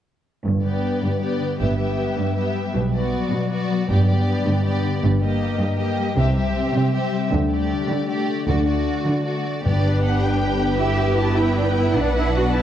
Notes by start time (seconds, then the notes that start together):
0.44 G1 G2
0.63 D3 B3 G4 D5
0.84 B3
1.03 G2 D3
1.21 B3 G4 D5
1.40 D3
1.59 G1 G2 B3 G4 E5
1.78 G3 B3 G4 E5
1.98 B3
2.17 G2 G3
2.36 B3 G4 E5
2.55 G3
2.74 B1 B2
2.94 F#3 B3 F#4 D5
3.12 B3
3.31 B2 F#3
3.50 B3 F#4 D5
3.71 F#3
3.89 G1 G2 B3 G4 D5
4.07 D3 B3 G4 D5
4.28 B3
4.46 G2 D3
4.64 B3 G4 D5
4.84 D3
5.03 G1 G2
5.22 G3 A#3 G4 D#5
5.42 A#3
5.60 G2 G3
5.78 A#3 G4 D#5
5.98 G3
6.16 C2 C3 C4 G4 E5
6.35 G3 C4 G4 E5
6.56 C4
6.74 C3 G3
6.93 C4 G4 E5
7.14 G3
7.32 D2 D3
7.51 A3 G4 D5
7.73 D4
7.90 D3 A3
8.08 A3 G4 A4 D5
8.30 A3
8.47 D2 D3 A3 F#4 D5
8.67 A3 F#4 D5
8.86 D4
9.06 D3 A3
9.24 A3 F#4 A4 D5
9.45 A3
9.64 G1 G2 B3 D4 G4 B4 D5
9.83 B3
10.03 D4 F#5
10.22 G4 G5
10.42 D4
10.62 B3
10.80 G2 E4 G4 E5
11.00 B3
11.19 E4 A5
11.38 E4 B4 G5
11.58 D4 E4
11.76 B3 E4
11.94 B1 B2 D4 F#5
12.14 B3 E4
12.33 D4 F#4
12.53 E4 B4 A5